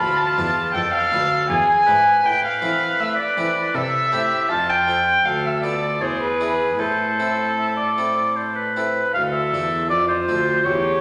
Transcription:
Already playing: F4
0.00 D2 B5
0.19 A5
0.38 E2 D4 F4 B4
0.74 F2 A4 G5
0.94 F5
1.12 D2 D4 F4 B4
1.49 E2 G#4 G#5
1.86 G#2 D4 E4 B4
2.23 A2 B4 G5
2.45 F5
2.61 E3 C4 E4 A4
2.99 A3 E5
3.17 D5
3.37 E3 C4 E4 A4
3.74 C3 A4 E5
4.12 A2 C4 E4 G4 A4
4.50 F2 F4 A5
4.69 G5
4.88 C4 F4 A4
5.25 D2 A4 F5
5.46 E5
5.63 B3 F4 A4 D5
6.01 E2 G#4 C5
6.22 B4
6.41 D4 E4 G#4
6.79 A2 A4 C5
7.20 C4 E4 A4
7.57 E5
7.77 D5
7.98 C4 E4 A4
8.36 C5
8.55 B4
8.76 C4 E4 A4
9.14 D2 A4 F5
9.32 E5
9.53 E2 D4 F4 A4
9.89 F2 F4 D5
10.08 C5
10.28 D2 D4 F4 A4
10.65 E2 G4 C#5

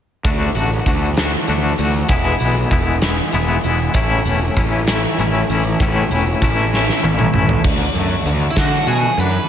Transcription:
0.24 D2 D3 A3 D4 F#4, kick, closed hi-hat
0.55 A1 A3 D4 F#4, closed hi-hat
0.86 D2 D3 A3 D4 F#4, kick, closed hi-hat
1.17 A3 D4 F#4, snare, closed hi-hat
1.47 D2 D3 A3 D4 F#4, closed hi-hat
1.78 D2 A3 D4 F#4, closed hi-hat
2.09 E1 E2 B2 E3 G#3 B3 E4, kick, closed hi-hat
2.40 B1 E3 G#3 B3 E4, closed hi-hat
2.70 E1 E3 G#3 B3 E4, kick, closed hi-hat
3.01 E3 G#3 B3 E4, snare, closed hi-hat
3.32 E1 E3 G#3 B3 E4, closed hi-hat
3.64 E1 E3 G#3 B3 E4, closed hi-hat
3.94 A1 A2 E3 A3 C#4 E4, kick, closed hi-hat
4.25 E1 A3 C#4 E4, closed hi-hat
4.57 A1 E3 A3 C#4 E4, kick, closed hi-hat
4.87 A3 C#4 E4, snare, closed hi-hat
5.18 A1 E3 A3 C#4 E4, closed hi-hat
5.50 A1 A3 C#4 E4, closed hi-hat
5.80 A1 A2 E3 A3 C#4 E4, kick, closed hi-hat
6.10 E1 A3 C#4 E4, closed hi-hat
6.42 A1 E3 A3 C#4 E4, kick, closed hi-hat
6.73 A3 C#4 E4, snare
6.89 snare
7.03 A1 E3 A3 C#4 E4, high tom
7.19 mid tom
7.33 A1 A3 C#4 E4, mid tom
7.49 floor tom
7.64 D2 D3, kick, crash
7.94 F#2 A3, closed hi-hat
8.26 D2 D3, closed hi-hat
8.51 E4
8.56 D3 A3 F#4, kick, snare, closed hi-hat
8.87 B2 F#4 G#4, closed hi-hat
9.18 F#2 D4 B4, closed hi-hat

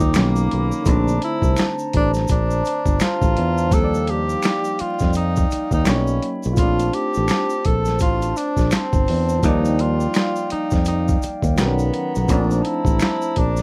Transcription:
Already playing: G3 A#3 D#4 F4 D5 G5 D6
0.00 D#2, kick, shaker
0.13 D#3 F#3 A#3 D#4 C#5 A#5 B5, finger snap, snare, closed hi-hat, shaker
0.17 B1 A#3 C#4
0.36 shaker
0.51 B1, closed hi-hat
0.72 shaker
0.82 D3 A3, kick, shaker
0.87 A#1 C4 D4 C5 A5, closed hi-hat
0.92 D4
1.08 shaker
1.22 E4, closed hi-hat
1.42 C2, kick, shaker
1.57 finger snap, snare, closed hi-hat, shaker
1.79 shaker
1.93 A1 D4, kick, closed hi-hat
2.14 snare, shaker
2.28 A#1 D4, kick, closed hi-hat, shaker
2.51 shaker
2.65 closed hi-hat, shaker
2.86 G1, kick, shaker
3.00 F4, finger snap, snare, closed hi-hat, shaker
3.22 A1, kick, shaker
3.37 E2, closed hi-hat
3.58 shaker
3.68 F3 G3 D#4 D5 F5 G5, kick, closed hi-hat, shaker
3.73 D#2 A#3 A4
3.78 C4
3.84 D5
3.94 shaker
4.07 G4, closed hi-hat
4.29 shaker
4.43 finger snap, snare, closed hi-hat, shaker
4.64 shaker
4.79 F4, muted fingered electric bass stroke, closed hi-hat
4.99 F2, kick, snare, shaker
5.13 D#4, closed hi-hat, shaker
5.36 kick, shaker
5.51 muted fingered electric bass stroke, closed hi-hat, shaker
5.71 D#2 D#4, kick, shaker
5.84 B1 F#3 A#3 C#4 C#5 B5, finger snap, snare, closed hi-hat, shaker
5.89 D4
5.96 D#4
6.07 shaker
6.22 closed hi-hat
6.43 B1, shaker
6.53 A3 F4, kick, shaker
6.58 A#1 C4 D4 F4 C5 A5, closed hi-hat
6.63 D4
6.79 closed hi-hat, shaker
6.93 G4, closed hi-hat
7.14 A1, shaker
7.28 finger snap, snare, closed hi-hat, shaker
7.50 shaker
7.65 A#1 A4, kick, closed hi-hat
7.85 snare, shaker
7.99 A1 F4, kick, closed hi-hat, shaker
8.22 closed hi-hat, shaker
8.36 D4, closed hi-hat, shaker
8.57 A#1, kick, snare, shaker
8.71 C4, finger snap, snare, closed hi-hat, shaker
8.93 G1, kick, shaker
9.08 E2, open hi-hat
9.29 shaker
9.39 F3 G3, kick
9.43 D#2 A#3 D#4 D5 F5 G5, closed hi-hat, shaker
9.48 D5
9.65 shaker
9.79 F4, closed hi-hat
10.00 shaker
10.14 finger snap, snare, closed hi-hat, shaker
10.36 shaker
10.50 D#4, muted fingered electric bass stroke, closed hi-hat
10.71 F2, kick, snare, shaker
10.85 D#4, closed hi-hat, shaker
11.08 kick, shaker
11.22 muted fingered electric bass stroke, closed hi-hat, shaker
11.42 D#2, kick, shaker
11.55 D#3 F#3 B3 A#4 C#5 F#5 A#5, finger snap, snare, closed hi-hat, shaker
11.60 B1 C4
11.67 C#4
11.79 shaker
11.94 closed hi-hat
12.15 B1, shaker
12.24 F3 A3 D4 C5 A5 A#5
12.29 A#1 C4 D4, kick, closed hi-hat, shaker
12.34 C#4
12.41 D4
12.51 shaker
12.62 D#4, closed hi-hat
12.67 E4
12.85 A1, kick, shaker
12.99 finger snap, snare, closed hi-hat, shaker
13.22 shaker
13.36 A#1 D4, kick, closed hi-hat
13.57 shaker

